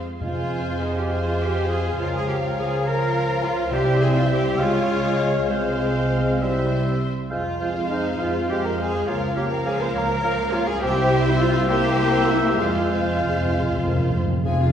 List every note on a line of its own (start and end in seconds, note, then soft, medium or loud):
0.20 1.07 F2 medium
0.20 1.95 F2 soft
0.20 3.69 F3 soft
0.20 1.95 G#3 soft
0.20 1.07 F4 soft
0.20 0.78 F4 medium
0.20 1.96 G#4 soft
0.20 1.06 C5 soft
0.20 1.96 C5 soft
0.20 0.77 F5 medium
0.20 3.68 F5 soft
0.20 1.07 G#5 soft
0.81 0.96 D#4 medium
0.81 0.87 D#5 soft
0.97 1.11 G4 soft
0.97 1.03 G5 soft
1.10 1.40 F4 medium
1.10 1.98 F4 soft
1.10 1.97 C5 soft
1.10 1.39 F5 medium
1.10 1.97 G#5 soft
1.40 1.70 G4 medium
1.40 1.69 G5 medium
1.69 1.99 G#4 medium
1.69 1.76 G#5 medium
1.98 3.69 C#2 medium
1.98 3.69 F3 medium
1.98 2.84 F4 soft
1.98 3.73 F4 medium
1.98 2.14 F4 medium
1.98 2.85 A#4 soft
1.98 3.70 C#5 medium
1.98 2.83 F5 soft
1.98 2.13 F5 medium
2.12 2.29 G#4 medium
2.12 2.27 G#5 medium
2.26 2.37 G4 medium
2.26 2.55 G5 medium
2.56 2.85 G#4 medium
2.56 2.85 G#5 medium
2.84 3.70 F4 medium
2.84 3.44 A#4 medium
2.84 3.71 A#4 medium
2.84 3.70 F5 medium
2.84 3.43 A#5 medium
3.43 3.73 F4 medium
3.43 3.72 F5 medium
3.71 4.56 C2 medium
3.71 4.55 C3 medium
3.71 4.60 G3 medium
3.71 4.56 C4 medium
3.71 4.58 E4 medium
3.71 4.01 G4 medium
3.71 4.61 C5 medium
3.71 4.56 C5 medium
3.71 4.55 E5 medium
3.71 4.60 E5 medium
3.71 4.00 G5 medium
4.00 4.07 G#4 medium
4.00 4.15 G#5 medium
4.16 4.22 F4 medium
4.16 4.30 F5 medium
4.29 4.59 G4 medium
4.29 4.59 G5 medium
4.58 5.49 C#2 medium
4.58 5.48 G#3 medium
4.58 5.47 G#3 medium
4.58 6.40 G#3 medium
4.58 6.40 F4 medium
4.58 5.17 F4 medium
4.58 5.48 C#5 medium
4.58 5.51 C#5 medium
4.58 5.17 F5 medium
4.58 5.48 F5 medium
4.58 5.49 F5 medium
5.18 5.27 F4 medium
5.18 5.25 F5 medium
5.48 7.07 C2 medium
5.48 6.38 G#3 soft
5.48 6.43 G#3 medium
5.48 6.98 C4 medium
5.48 6.39 C5 soft
5.48 6.97 C5 medium
5.48 6.41 C5 medium
5.48 6.38 F5 soft
5.48 6.39 F5 soft
6.40 7.00 G3 soft
6.40 7.10 G3 soft
6.40 7.01 G3 soft
6.40 7.01 E4 soft
6.40 7.08 C5 soft
6.40 7.00 C5 soft
6.40 7.08 E5 soft
6.40 7.00 E5 soft
7.30 8.10 F2 medium
7.30 9.03 G#3 medium
7.30 7.44 G#3 soft
7.30 10.78 F4 soft
7.30 7.87 F4 medium
7.30 7.44 C5 soft
7.30 7.43 F5 soft
7.30 7.86 F5 medium
7.59 8.48 G#3 soft
7.59 7.75 G#3 soft
7.59 8.47 C5 soft
7.59 7.74 C5 soft
7.59 7.74 F5 soft
7.59 8.48 F5 soft
7.90 8.04 G#3 soft
7.90 8.20 D#4 medium
7.90 8.05 C5 soft
7.90 7.97 D#5 soft
7.90 8.03 F5 soft
8.18 8.97 F2 soft
8.18 8.34 G#3 soft
8.18 8.49 F4 medium
8.18 8.34 C5 soft
8.18 8.32 F5 soft
8.18 8.26 F5 medium
8.48 9.06 G#3 soft
8.48 8.64 G4 medium
8.48 9.05 C5 soft
8.48 8.62 C5 soft
8.48 8.61 F5 soft
8.48 9.06 F5 soft
8.48 8.64 G5 medium
8.52 8.64 G#3 soft
8.64 8.78 A#4 medium
8.64 8.79 A#5 medium
8.77 8.93 G#3 soft
8.77 9.06 G#4 medium
8.77 8.92 C5 soft
8.77 8.91 F5 soft
8.77 9.07 G#5 medium
9.06 9.84 C#2 medium
9.06 9.34 F3 soft
9.06 9.21 A#3 medium
9.06 10.80 A#3 medium
9.06 9.36 F4 medium
9.06 9.35 A#4 soft
9.06 9.20 C#5 medium
9.06 9.20 F5 soft
9.06 9.36 F5 soft
9.06 9.36 F5 medium
9.35 10.22 F3 soft
9.35 9.50 A#3 soft
9.35 9.42 G4 medium
9.35 10.22 A#4 medium
9.35 9.49 C#5 medium
9.35 9.49 F5 soft
9.35 10.22 F5 medium
9.35 9.51 G5 medium
9.51 9.65 A#4 medium
9.51 9.66 A#5 medium
9.65 9.79 A#3 soft
9.65 9.81 G#4 medium
9.65 9.79 C#5 soft
9.65 9.79 F5 soft
9.65 9.80 G#5 medium
9.81 9.95 C5 medium
9.81 9.95 C6 medium
9.94 10.72 C#2 medium
9.94 10.09 A#3 medium
9.94 10.52 A#4 medium
9.94 10.07 C#5 soft
9.94 10.08 F5 medium
9.94 10.53 A#5 medium
10.21 10.81 F3 medium
10.21 10.38 A#3 medium
10.21 10.81 A#4 medium
10.21 10.35 C#5 medium
10.21 10.37 F5 medium
10.21 10.81 F5 medium
10.52 10.66 A#3 medium
10.52 10.67 F4 medium
10.52 10.65 C#5 medium
10.52 10.66 F5 medium
10.52 10.67 F5 medium
10.68 10.82 G#4 medium
10.68 10.82 G#5 medium
10.80 11.65 C2 medium
10.80 11.65 G3 medium
10.80 11.65 C4 medium
10.80 11.66 C4 medium
10.80 11.65 E4 medium
10.80 11.25 G4 medium
10.80 11.65 C5 medium
10.80 11.65 E5 medium
10.80 11.66 E5 medium
10.80 11.25 G5 medium
11.26 11.40 E4 medium
11.26 11.41 E5 medium
11.40 11.69 F4 medium
11.40 11.69 F5 medium
11.67 12.59 C2 medium
11.67 12.60 A#3 medium
11.67 12.62 A#3 medium
11.67 12.58 E4 medium
11.67 12.28 G4 medium
11.67 12.58 C5 medium
11.67 12.59 C5 medium
11.67 12.59 E5 medium
11.67 12.63 E5 medium
11.67 12.29 G5 loud
12.30 12.45 E4 medium
12.30 12.45 E5 medium
12.45 12.61 G4 medium
12.45 12.51 G5 medium
12.58 14.21 F2 medium
12.58 12.68 F2 soft
12.58 13.35 G#3 medium
12.58 14.20 G#3 soft
12.58 14.14 G#3 medium
12.58 13.35 F4 medium
12.58 14.12 F4 medium
12.58 14.20 C5 medium
12.58 14.12 C5 medium
12.58 14.11 F5 medium
12.58 14.24 F5 medium
12.58 14.15 F5 medium
12.69 12.75 F2 soft
12.76 12.83 F2 soft
12.84 12.91 F2 soft
12.93 12.98 F2 soft
13.00 13.06 F2 soft
13.08 13.14 F2 soft
13.16 13.22 F2 soft
13.23 13.30 F2 soft
13.31 13.39 F2 soft
13.40 13.47 F2 soft
13.48 13.54 F2 soft
13.48 13.66 G#3 medium
13.55 13.61 F2 soft
13.63 13.69 F2 medium
13.70 13.77 F2 medium
13.78 13.85 F2 medium
13.82 14.13 A#3 medium
13.87 13.93 F2 medium
13.95 14.00 F2 medium
14.01 14.09 F2 medium
14.10 14.16 F2 medium
14.15 14.25 F2 medium
14.15 14.45 C4 soft
14.26 14.32 F2 medium
14.33 14.40 F2 medium
14.44 14.72 F1 medium
14.44 14.72 F2 medium
14.44 14.58 F3 soft
14.44 14.72 G#3 medium
14.44 14.72 F4 medium
14.44 14.58 G#4 soft
14.44 14.72 F5 medium
14.44 14.59 G#5 medium
14.60 14.72 G#3 soft
14.60 14.72 F4 soft
14.60 14.72 F5 soft